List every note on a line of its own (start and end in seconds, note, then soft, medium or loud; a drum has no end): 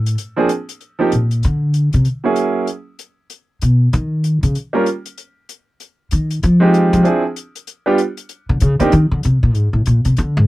0.00 0.14 A2 medium
0.06 closed hi-hat soft
0.18 closed hi-hat soft
0.36 0.48 F3 medium
0.36 0.48 A#3 medium
0.36 0.48 C4 medium
0.36 0.48 D4 medium
0.36 0.48 G#4 medium
0.49 closed hi-hat medium
0.69 closed hi-hat soft
0.81 closed hi-hat soft
0.99 1.10 F3 medium
0.99 1.10 A#3 soft
0.99 1.10 C4 soft
0.99 1.11 D#4 medium
0.99 1.11 G4 medium
1.12 1.41 A#2 medium
1.12 closed hi-hat soft
1.31 closed hi-hat soft
1.43 1.90 D3 medium
1.43 closed hi-hat soft
1.74 closed hi-hat soft
1.93 2.05 C3 medium
1.93 closed hi-hat soft
2.05 closed hi-hat soft
2.24 2.65 F#3 medium
2.24 2.65 A#3 medium
2.24 2.65 C#4 medium
2.24 2.66 E4 soft
2.24 2.66 G#4 medium
2.36 closed hi-hat soft
2.67 closed hi-hat soft
2.99 closed hi-hat soft
3.30 closed hi-hat soft
3.61 3.91 B2 medium
3.61 closed hi-hat soft
3.93 4.40 D#3 loud
3.93 closed hi-hat soft
4.24 closed hi-hat medium
4.43 4.55 C#3 medium
4.43 closed hi-hat soft
4.55 closed hi-hat soft
4.73 4.85 G3 medium
4.73 4.85 A#3 soft
4.73 4.85 C#4 medium
4.73 4.85 F4 medium
4.73 4.86 A#4 medium
4.86 closed hi-hat soft
5.06 closed hi-hat soft
5.18 closed hi-hat soft
5.49 closed hi-hat soft
5.80 closed hi-hat soft
6.11 6.41 D#3 medium
6.11 closed hi-hat medium
6.30 closed hi-hat soft
6.43 6.90 F3 medium
6.43 closed hi-hat soft
6.60 7.02 G#3 medium
6.60 7.02 C4 medium
6.60 7.02 D#4 medium
6.60 7.03 F4 medium
6.60 7.03 G4 medium
6.74 closed hi-hat medium
6.93 7.00 F3 loud
6.93 closed hi-hat soft
7.03 7.21 F3 medium
7.03 7.22 C4 medium
7.03 7.22 D4 soft
7.03 7.22 E4 medium
7.03 7.23 G#4 medium
7.03 closed hi-hat soft
7.36 closed hi-hat soft
7.55 closed hi-hat soft
7.67 closed hi-hat soft
7.86 7.97 G3 medium
7.86 7.97 B3 medium
7.86 7.98 D4 medium
7.86 7.98 F4 medium
7.86 7.98 G4 medium
7.98 closed hi-hat soft
8.17 closed hi-hat soft
8.29 closed hi-hat soft
8.49 8.61 D3 loud
8.60 8.79 C#3 medium
8.60 closed hi-hat medium
8.80 8.92 D3 medium
8.80 8.91 A#3 medium
8.80 8.91 C4 medium
8.80 8.91 D4 medium
8.80 8.92 D#4 medium
8.80 8.92 G4 medium
8.80 closed hi-hat soft
8.92 9.11 D#3 loud
8.92 closed hi-hat soft
9.12 9.23 D3 medium
9.23 9.42 C3 medium
9.23 closed hi-hat medium
9.43 9.55 A#2 medium
9.55 9.73 G#2 medium
9.55 closed hi-hat soft
9.73 9.85 A2 medium
9.86 10.05 A#2 medium
9.86 closed hi-hat medium
10.05 10.17 C3 medium
10.05 closed hi-hat soft
10.17 10.36 D3 loud
10.17 closed hi-hat soft
10.37 10.44 G#2 loud